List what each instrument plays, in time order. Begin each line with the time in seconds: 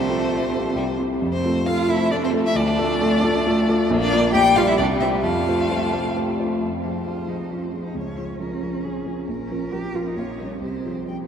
Already playing: grand piano C2, violin A3 C5, cello C4
0.09 grand piano C4 F4 A4
0.31 grand piano C4 F4 A4
0.53 grand piano C4 F4 A4
0.75 grand piano C2, violin G3
0.98 grand piano C4 E4 G4
1.22 grand piano F2, violin A3
1.33 cello C4, violin C5
1.45 grand piano A3 F4 A4
1.66 grand piano A3 F4 A4, cello F4, violin F5
1.88 grand piano A3 F4 A4, cello E4, violin E5
2.11 grand piano A3 F4 A4, cello D4, violin D5
2.23 cello C4, violin C5
2.32 grand piano A3 F4 A4
2.46 cello E4, violin E5
2.55 grand piano D2, cello D4, violin D5
2.78 grand piano A3 F4 A4
3.01 grand piano A3 F4 A4
3.23 grand piano A3 F4 A4
3.46 grand piano A3 F4 A4
3.68 grand piano A3 F4 A4
3.90 grand piano A#1, violin A#3
4.00 cello D4, violin D5
4.13 grand piano A#3 F4 D5
4.33 grand piano A#1, violin G3 G5, cello G4
4.56 grand piano G3 G4 D5, cello F4, violin F5
4.67 cello E4, violin E5
4.77 grand piano C2, violin G3 D5, cello D4
5.00 grand piano G3 G4 C5, cello E4, violin E5
5.22 grand piano F2, violin A3 F5, cello F4
5.47 grand piano A3 F4 C5
5.70 grand piano A3 F4 C5
5.93 grand piano A3 F4 C5
6.16 grand piano A3 F4 C5
6.40 grand piano A3 F4 C5
6.60 grand piano F2, violin C5
6.73 cello C4
6.85 grand piano F3 F4 G#4
7.07 grand piano F3 F4 G#4, cello F4
7.28 grand piano F3 F4 G#4, cello D#4
7.51 grand piano F3 F4 G#4, cello C#4
7.63 cello C4
7.72 grand piano F3 F4 G#4
7.85 cello D#4
7.95 grand piano C#2, cello C#4, violin C#5
8.18 grand piano F3 F4 G#4
8.40 grand piano F3 F4 G#4, violin A#4
8.63 grand piano F3 F4 G#4
8.84 grand piano F3 F4 G#4, violin G#4
9.06 grand piano F3 F4 G#4
9.28 grand piano A#1, violin A#4
9.39 cello C#4
9.51 grand piano F3 F4 A#4
9.72 grand piano F3 F4 A#4, cello G4
9.94 grand piano F3 F4 A#4, cello F4
10.07 cello D#4
10.17 grand piano A#1, cello F4, violin C#5
10.31 cello D#4
10.39 grand piano G3 C#4 A#4
10.52 cello C#4
10.61 grand piano C2, cello C4, violin C5
10.85 grand piano F3 F4 G#4
11.08 grand piano F3 F4 G#4, violin G5